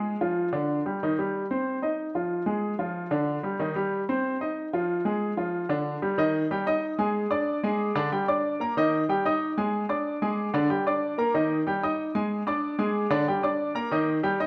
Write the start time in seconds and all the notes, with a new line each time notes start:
Already playing: G#3 G#4
0.21 F3 F4
0.53 D3 D4
0.86 G3 G4
1.03 D#3 D#4
1.19 G3 G4
1.51 C4 C5
1.82 D#4 D#5
2.15 F3 F4
2.46 G#3 G#4
2.79 F3 F4
3.11 D3 D4
3.43 G3 G4
3.60 D#3 D#4
3.75 G3 G4
4.09 C4 C5
4.41 D#4 D#5
4.73 F3 F4
5.05 G#3 G#4
5.37 F3 F4
5.69 D3 D4
6.02 G3 G4
6.18 D#3 D#4 D#5
6.51 G3 G4 G5
6.66 D#4 D#5 D#6
6.99 G#3 G#4 G#5
7.31 D4 D5 D6
7.63 G#3 G#4 G#5
7.95 D3 D4 D5
8.12 G3 G4 G5
8.28 D4 D5 D6
8.60 A#3 A#4 A#5
8.77 D#3 D#4 D#5
9.09 G3 G4 G5
9.25 D#4 D#5 D#6
9.58 G#3 G#4 G#5
9.89 D4 D5 D6
10.22 G#3 G#4 G#5
10.54 D3 D4 D5
10.70 G3 G4 G5
10.87 D4 D5 D6
11.18 A#3 A#4 A#5
11.34 D#3 D#4 D#5
11.67 G3 G4 G5
11.83 D#4 D#5 D#6
12.15 G#3 G#4 G#5
12.47 D4 D5 D6
12.79 G#3 G#4 G#5
13.10 D3 D4 D5
13.27 G3 G4 G5
13.43 D4 D5 D6
13.75 A#3 A#4 A#5
13.91 D#3 D#4 D#5
14.23 G3 G4 G5
14.40 D#4 D#5 D#6